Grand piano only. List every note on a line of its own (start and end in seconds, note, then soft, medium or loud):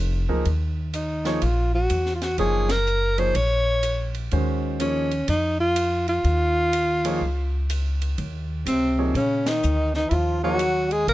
0.29 0.44 F3 medium
0.29 0.44 A#3 medium
0.29 0.44 D#4 medium
0.29 0.44 G#4 medium
0.29 0.44 A#4 medium
1.26 1.40 F3 medium
1.26 1.40 A#3 medium
1.26 1.41 D#4 medium
1.26 1.41 G#4 medium
1.26 1.41 C#5 medium
2.39 2.67 F3 medium
2.39 2.67 A#3 medium
2.39 2.67 D#4 medium
2.39 2.67 G#4 medium
2.39 2.67 C#5 medium
3.18 3.33 F3 medium
3.18 3.33 A#3 medium
3.18 3.33 D#4 soft
3.18 3.33 G#4 soft
3.18 3.33 C#5 medium
4.32 4.79 D#3 medium
4.32 4.79 G#3 medium
4.32 4.79 C#4 medium
4.32 4.79 F#4 medium
4.32 4.79 C5 medium
4.81 5.09 F3 medium
4.81 5.09 A#3 medium
4.81 5.09 D#4 soft
4.81 5.09 G#4 medium
4.81 5.09 C#5 medium
7.05 7.20 F3 medium
7.05 7.20 A#3 medium
7.05 7.20 D#4 medium
7.05 7.20 G#4 medium
7.05 7.20 C#5 medium
8.98 9.13 F3 medium
8.98 9.13 A#3 medium
8.98 9.13 D#4 medium
8.98 9.13 G#4 medium
8.98 9.13 C#5 medium
10.43 10.58 F3 medium
10.43 10.58 A#3 medium
10.43 10.58 D#4 medium
10.43 10.58 G#4 medium
10.43 10.59 C#5 medium